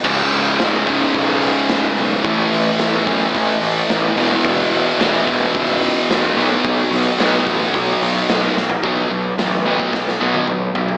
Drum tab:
CC |x---------------|----------------|----------------|----------------|
HH |--o-o-o-o-o-o-o-|o-o-o-o-o-o-o-o-|o-o-o-o-o-o-o-o-|o-o-o-o-o-o-o---|
SD |----o-------o---|----o-------o---|----o-------o---|----o-------o-o-|
T1 |----------------|----------------|----------------|----------------|
T2 |----------------|----------------|----------------|----------------|
FT |----------------|----------------|----------------|---------------o|
BD |o-----o-o-------|o-----o-o-------|o-----o-o-------|o-----o-o-------|

CC |----------------|
HH |o---o-----------|
SD |----o---oo------|
T1 |-----------o----|
T2 |------------o---|
FT |--------------oo|
BD |o------oo-------|